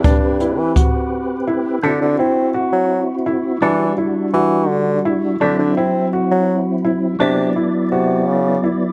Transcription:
<<
  \new Staff \with { instrumentName = "Grand piano" } { \time 5/8 \key d \mixolydian \tempo 4 = 84 d'8 e'8 fis'4 e'8 | d'8 e'8 fis'4 e'8 | d'8 e'8 fis'4 e'8 | d'8 e'8 fis'4 e'8 |
d'8 e'8 fis'4 e'8 | }
  \new Staff \with { instrumentName = "Tonewheel organ" } { \time 5/8 \key d \mixolydian <c' g' b'>2~ <c' g' b'>8 | <c' e' fis'>2~ <c' e' fis'>8 | <g d' fis'>2~ <g d' fis'>8 | <fis c' e'>2~ <fis c' e'>8 |
<fis b e' d''>2~ <fis b e' d''>8 | }
  \new Staff \with { instrumentName = "Bassoon" } { \clef bass \time 5/8 \key d \mixolydian g,8. e16 r4. | d16 d16 c'8 r16 fis8 r8. | e8 r8 e8 d8 r8 | d16 d16 c'8 r16 fis8 r8. |
c8 r8 c8 cis8 r8 | }
  \new DrumStaff \with { instrumentName = "Drums" } \drummode { \time 5/8 <hh bd>8 hh8 <hh bd>8 r4 | r4. r4 | r4. r4 | r4. r4 |
r4. r4 | }
>>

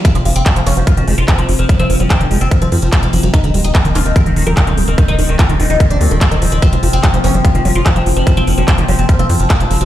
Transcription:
<<
  \new Staff \with { instrumentName = "Synth drone" } { \clef bass \time 4/4 \key ees \dorian \tempo 4 = 146 <f c'>1~ | <f c'>1~ | <f c'>1~ | <f c'>1~ |
<f c'>1~ | <f c'>1 | }
  \new Staff \with { instrumentName = "Acid bass" } { \clef bass \time 4/4 \key ees \dorian f16 f16 f'16 r16 ges16 f16 f16 ges16 f16 ees16 aes16 r16 f16 f16 f'16 r16 | ges16 f16 f16 ges16 f16 ees16 aes16 r16 f16 f16 f'16 r16 ges16 f16 f16 ges16 | ees16 d16 g16 r16 ees16 ees16 ees'16 r16 f16 ees16 ees16 f16 ees16 d16 g16 r16 | ees16 ees16 ees'16 r16 f16 ees16 ees16 f16 ees16 d16 g16 d16 g16 ees16 f16 r16 |
f16 f16 f'16 r16 ges16 f16 f16 ges16 f16 ees16 ges16 r16 f16 f16 f'16 r16 | ges16 f16 f16 ges16 f16 ees16 ges16 r16 f16 f16 f'16 r16 ges16 f16 f16 ges16 | }
  \new Staff \with { instrumentName = "Oud" } { \clef bass \time 4/4 \key ees \dorian c'16 f16 f16 c'16 f16 f16 des'16 f16 f'16 f16 f16 f'16 f16 f16 r16 f16 | f16 c'16 f16 f16 c'16 f16 f16 c'16 f16 c'16 f16 f16 bes16 f16 f16 f16 | ees'16 ees16 ees16 ees'16 ees16 ees16 f'16 ees16 bes'16 ees16 ees16 bes'16 ees16 ees16 r16 ees16 | ees16 ees'16 ees16 ees16 f'16 ees16 ees16 ees'16 ees16 d'16 ees16 ees16 c'16 ees16 ees16 ees16 |
c'16 f16 f16 c'16 f16 f16 des'16 f16 f'16 f16 f16 f'16 f16 f16 r16 f16 | f16 c'16 f16 f16 c'16 f16 f16 c'16 f16 c'16 f16 f16 bes16 f16 f16 f16 | }
  \new Staff \with { instrumentName = "Analog synth bass" } { \clef bass \time 4/4 \key ees \dorian r16 f,,16 f,,16 f,,16 r16 f,,16 f,,16 f,,16 r16 f,,16 f,,16 f,,16 r16 f,,16 f,,16 f,,16 | r16 f,,16 f,,16 f,,16 r16 f,,16 f,,16 f,,16 r16 f,,16 f,16 f,,16 r16 f,,16 f,,16 f,,16 | r16 ees,,16 ees,,16 ees,,16 r16 ees,,16 ees,,16 ees,,16 r16 ees,,16 ees,,16 ees,,16 r16 ees,,16 ees,,16 ees,,16 | r16 ees,,16 ees,,16 ees,,16 r16 ees,,16 ees,,16 ees,,16 r16 ees,,16 ees,16 ees,,16 r16 ees,,16 ees,,16 ees,,16 |
r16 f,,16 f,,16 f,,16 r16 f,,16 f,,16 f,,16 r16 f,,16 f,,16 f,,16 r16 f,,16 f,,16 f,,16 | r16 f,,16 f,,16 f,,16 r16 f,,16 f,,16 f,,16 r16 f,,16 f,16 f,,16 r16 f,,16 f,,16 f,,16 | }
  \new DrumStaff \with { instrumentName = "Drums" } \drummode { \time 4/4 <hh bd>16 hh16 hho16 hh16 <hc hh bd>16 hh16 <hc hho>16 hh16 <hh bd>16 hh16 hho16 hh16 <hc hh bd>16 hh16 hho16 hh16 | <hh bd>16 hh16 hho16 hh16 <hc hh bd>16 hh16 hho16 hh16 <hh bd>16 hh16 hho16 hh16 <hc hh bd>16 hh16 hho16 hh16 | <hh bd>16 hh16 hho16 hh16 <hc hh bd>16 hh16 <hc hho>16 hh16 <hh bd>16 hh16 hho16 hh16 <hc hh bd>16 hh16 hho16 hh16 | <hh bd>16 hh16 hho16 hh16 <hc hh bd>16 hh16 hho16 hh16 <hh bd>16 hh16 hho16 hh16 <hc hh bd>16 hh16 hho16 hh16 |
<hh bd>16 hh16 hho16 hh16 <hc hh bd>16 hh16 <hc hho>16 hh16 <hh bd>16 hh16 hho16 hh16 <hc hh bd>16 hh16 hho16 hh16 | <hh bd>16 hh16 hho16 hh16 <hc hh bd>16 hh16 hho16 hh16 <hh bd>16 hh16 hho16 hh16 <hc hh bd>16 hh16 hho16 hh16 | }
>>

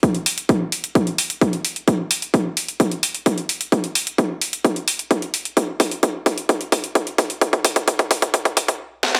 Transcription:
\new DrumStaff \with { instrumentName = "Drums" } \drummode { \time 4/4 \tempo 4 = 130 <hh bd>16 hh16 hho16 hh16 <hh bd>8 hho16 hh16 <hh bd>16 hh16 hho16 hh16 <hh bd>16 hh16 hho16 hh16 | <hh bd>8 hho16 hh16 <hh bd>8 hho16 hh16 <hh bd>16 hh16 hho16 hh16 <hh bd>16 hh16 hho16 hh16 | <hh bd>16 hh16 hho16 hh16 <hh bd>8 hho16 hh16 <hh bd>16 hh16 hho16 hh16 <hh bd>16 hh16 hho16 hh16 | <hh bd>8 <hho bd>16 hh16 <hh bd>8 <hho bd>16 hh16 <hh bd>16 hh16 <hho bd>16 hh16 <hh bd>16 hh16 <hho bd>16 hh16 |
<hh bd>16 <hh bd>16 <hho bd>16 <hh bd>16 <hh bd>16 <hh bd>16 <hho bd>16 <hh bd>16 <hh bd>16 <hh bd>16 <hho bd>16 <hh bd>16 r8 sn16 sn16 | }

